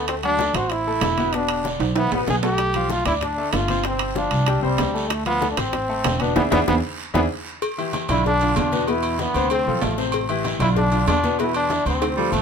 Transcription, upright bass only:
Already playing: D2
0.54 A1
1.01 E1
1.79 B1
2.12 A1
2.28 B1
3.06 D2
3.53 G1
4.31 C2
4.63 C2
4.79 D2
5.57 A1
6.04 E1
6.36 E2
6.52 E2
6.68 E2
7.14 E2
8.09 B1
8.57 E2
9.34 D2
9.67 B1
9.82 A1
10.59 B1
11.07 E2
11.86 D2
12.32 A1

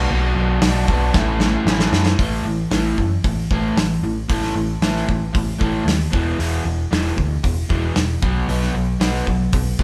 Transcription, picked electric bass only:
0.11 B1
0.36 B1
0.63 B1
0.88 B1
1.14 A1
1.66 A1
1.92 F#2
2.19 A1
2.44 A1
2.71 A1
2.98 F#2
3.24 A1
3.51 A1
3.77 A1
4.03 A1
4.29 A1
4.55 A1
4.82 A1
5.08 A1
5.35 A1
5.61 A1
5.85 D#2
6.13 E1
6.39 E1
6.65 E1
6.92 E1
7.18 D2
7.44 E1
7.70 E1
7.97 E1
8.22 B1
8.48 B1
8.74 B1
9.01 B1
9.27 B1
9.53 B1
9.79 B1

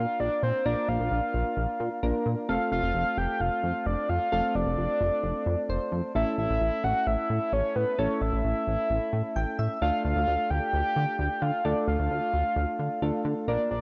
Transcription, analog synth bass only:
0.20 A#1
0.43 A#2
0.66 A#1
0.89 A#1
1.00 A#1
1.11 A#1
1.34 A#1
1.57 A#1
1.80 A#2
2.03 A#1
2.26 A#2
2.49 F1
2.72 F1
2.83 F1
2.95 F1
3.18 F1
3.40 F1
3.63 F2
3.86 F1
4.09 F2
4.32 F1
4.55 F1
4.66 F1
4.78 F1
5.01 F1
5.23 F1
5.46 F2
5.69 F1
5.92 F2
6.15 A1
6.38 A1
6.50 A1
6.61 A1
6.84 A1
7.07 A1
7.30 A2
7.53 A1
7.76 A2
7.98 A1
8.21 A1
8.33 A1
8.44 A1
8.67 A1
8.90 A1
9.13 A2
9.36 A1
9.59 A2
9.82 D2
10.05 D2
10.16 D2
10.28 D2
10.50 D2
10.73 D2
10.96 D3
11.19 D2
11.42 D3
11.65 D2
11.88 D2
11.99 D2
12.11 D2
12.34 D2
12.56 D2
12.79 D3
13.02 D2
13.25 D3
13.48 A#1
13.71 A#1

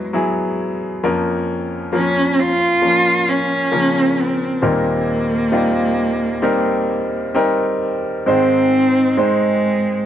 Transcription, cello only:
Already playing: G#3
1.94 C#4
2.39 F4
3.29 C#4
4.21 C4
4.65 A#3
8.30 C4
9.19 G#3

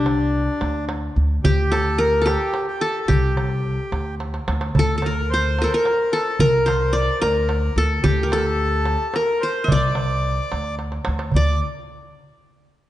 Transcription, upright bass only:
Already playing: C2
0.62 D2
1.16 D2
1.45 D2
3.09 C2
3.92 D2
4.48 D2
4.75 D2
6.39 C2
7.22 D2
7.76 D2
8.05 D2
9.70 C2
10.52 D2
11.07 D2
11.34 D2

